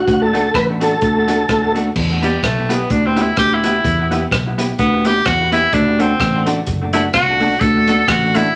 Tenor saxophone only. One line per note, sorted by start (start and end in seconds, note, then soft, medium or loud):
2.23 2.42 G3 medium
2.43 2.77 A3 medium
2.75 2.92 B3 medium
2.91 3.08 D4 medium
3.06 3.23 C4 medium
3.22 3.37 E4 medium
3.39 3.56 G4 loud
3.54 4.25 E4 medium
4.79 5.08 B3 medium
5.06 5.28 G4 loud
5.26 5.52 F#4 loud
5.53 5.75 E4 loud
5.73 6.02 D4 loud
6.01 6.47 C4 medium
6.93 7.03 E4 medium
7.14 7.62 F#4 loud
7.60 8.10 A4 loud
8.08 8.37 F#4 loud
8.35 8.55 E4 loud